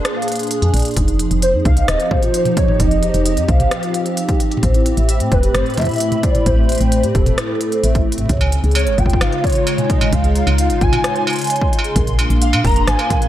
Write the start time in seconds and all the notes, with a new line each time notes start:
Already playing: A#2 A#3 D4 G#4 C6
0.05 G#4, cross-stick, closed hi-hat
0.16 F5
0.22 closed hi-hat
0.28 closed hi-hat
0.32 closed hi-hat
0.36 G#4, closed hi-hat
0.39 closed hi-hat
0.43 closed hi-hat
0.47 closed hi-hat
0.51 G#4, closed hi-hat
0.62 F2 G#5, closed hi-hat
0.74 A#1 D5, closed hi-hat
0.77 closed hi-hat
0.79 closed hi-hat
0.82 closed hi-hat
0.85 D4, closed hi-hat
0.88 closed hi-hat
0.91 closed hi-hat
0.94 closed hi-hat
0.97 F1 F3 D#4, kick, closed hi-hat
1.08 C4 D#4, closed hi-hat
1.18 D#4, closed hi-hat
1.31 F1, closed hi-hat
1.42 C5, closed hi-hat
1.54 F2 D#4 G4
1.65 C2 F5, kick, closed hi-hat
1.77 D#5, closed hi-hat
1.88 D#1 C5 D#5, cross-stick, closed hi-hat
2.00 F5, closed hi-hat
2.11 C5, kick, mid tom
2.23 F4, closed hi-hat
2.34 C5, closed hi-hat
2.45 closed hi-hat, mid tom
2.57 D#4 C#5, kick, closed hi-hat
2.68 D#4, mid tom
2.80 F1 D#4 D#5, kick, closed hi-hat
2.91 closed hi-hat
3.03 C5, closed hi-hat
3.14 F1 D#4, closed hi-hat
3.26 closed hi-hat
3.37 F2 D#5, closed hi-hat
3.48 C2 C5 F5, kick, closed hi-hat
3.60 F5, closed hi-hat, mid tom
3.71 cross-stick, closed hi-hat
3.83 F4, closed hi-hat
3.94 C5, closed hi-hat
4.06 closed hi-hat
4.17 D#4, closed hi-hat
4.29 D#4, kick, closed hi-hat
4.40 D#4, closed hi-hat
4.51 closed hi-hat
4.57 mid tom
4.63 A1 A2 C5, kick, closed hi-hat
4.74 E4, closed hi-hat
4.85 A3 B5, closed hi-hat
4.97 A1 E5, closed hi-hat
5.09 C5 E5, closed hi-hat
5.20 A2 G5, closed hi-hat
5.32 E1 B4, kick, closed hi-hat
5.43 G4, closed hi-hat
5.55 G1 C5, cross-stick, closed hi-hat
5.66 closed hi-hat
5.70 closed hi-hat
5.74 closed hi-hat
5.77 E4 E5, kick, closed hi-hat, mid tom
5.80 kick, closed hi-hat
5.82 kick
5.84 kick, closed hi-hat
5.87 E4, kick, closed hi-hat
5.91 closed hi-hat
5.94 closed hi-hat
5.96 closed hi-hat
5.98 closed hi-hat
6.00 E4, closed hi-hat
6.12 closed hi-hat, mid tom
6.23 C5 D5, kick, closed hi-hat
6.35 E4, closed hi-hat, mid tom
6.46 A1 C5, kick, closed hi-hat
6.58 E5
6.69 C5, closed hi-hat
6.72 closed hi-hat
6.75 closed hi-hat
6.78 A1 G5, closed hi-hat
6.81 closed hi-hat
6.92 closed hi-hat
7.03 A2 G4, closed hi-hat
7.15 E1 A4 C5, kick, closed hi-hat
7.26 closed hi-hat, mid tom
7.38 E4, cross-stick, closed hi-hat
7.49 E4
7.61 A4, closed hi-hat
7.72 C5, closed hi-hat
7.84 A1 E5, closed hi-hat
7.95 E4, kick, closed hi-hat
8.12 closed hi-hat
8.18 E5, closed hi-hat, mid tom
8.22 mid tom
8.26 C#3, closed hi-hat, mid tom
8.29 C#2 C#5, kick, mid tom
8.33 mid tom
8.37 G#5, closed hi-hat, mid tom, struck metal
8.42 G#3
8.50 D#4, closed hi-hat
8.64 C#2 G#4, closed hi-hat
8.71 closed hi-hat
8.75 C#5, closed hi-hat, struck metal
8.79 closed hi-hat
8.87 G#1 F4, closed hi-hat
8.94 G#1 F4 G5 C6, kick, closed hi-hat
9.06 F4, kick, closed hi-hat
9.13 kick
9.21 G#1 F5, cross-stick, closed hi-hat, struck metal
9.32 closed hi-hat
9.44 C#5, kick, closed hi-hat
9.47 closed hi-hat
9.50 closed hi-hat
9.52 closed hi-hat
9.55 F4, closed hi-hat
9.67 closed hi-hat, struck metal
9.78 G#5, closed hi-hat, mid tom
9.90 C#5 D#5, kick, closed hi-hat
10.01 G#5, closed hi-hat, mid tom, struck metal
10.13 C#2 F5, kick, closed hi-hat
10.24 G#4, closed hi-hat
10.35 C#5, closed hi-hat
10.47 C#2, closed hi-hat, struck metal
10.58 F4, closed hi-hat
10.70 G#1 F4, closed hi-hat
10.81 G#1 F4 G#5, kick, closed hi-hat
10.93 closed hi-hat, mid tom, struck metal
11.04 C#5, cross-stick, closed hi-hat
11.16 F4, closed hi-hat
11.27 closed hi-hat, struck metal
11.30 closed hi-hat
11.33 closed hi-hat
11.36 closed hi-hat
11.39 G#5, closed hi-hat
11.41 closed hi-hat
11.44 closed hi-hat
11.47 C#5, closed hi-hat
11.50 closed hi-hat
11.56 closed hi-hat
11.61 G#5, kick
11.73 closed hi-hat
11.79 struck metal
11.84 G#4, closed hi-hat
11.96 A#1 A#2 A#4, kick, closed hi-hat, mid tom
12.04 A#3, closed hi-hat
12.18 D4 G#4, closed hi-hat, struck metal
12.30 A#1 D4, closed hi-hat
12.42 D4 F5, closed hi-hat
12.53 A#2, closed hi-hat, struck metal
12.64 F1 A#4 A#5, kick, closed hi-hat
12.67 closed hi-hat
12.69 closed hi-hat
12.71 closed hi-hat
12.74 D4, closed hi-hat
12.76 closed hi-hat
12.87 G#1 G#5, cross-stick, closed hi-hat
12.99 F5, closed hi-hat, struck metal
13.10 A#4, kick, closed hi-hat, mid tom
13.22 F5, closed hi-hat